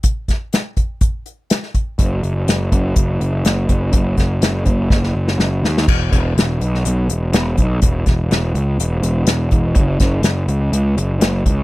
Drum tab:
CC |----------------|----------------|----------------|x---------------|
HH |x-x-x-x-x-x-x-x-|x-x-x-x-x-x-x-x-|x-x-x-x---------|--x-x-x-x-x-x-x-|
SD |--o-o-------oo--|----o-------o---|--o-o---oo-oo-oo|----o--o----o---|
BD |o-o---o-o-----o-|o-----o-o-----o-|o-o---o-o-------|o-o-----------o-|

CC |----------------|----------------|
HH |x-x-x-x-x-x-x-x-|x-x-x-x-x-x-x-x-|
SD |--o-o-------o---|--o-o-------o---|
BD |o-o-----------o-|o-o-----------o-|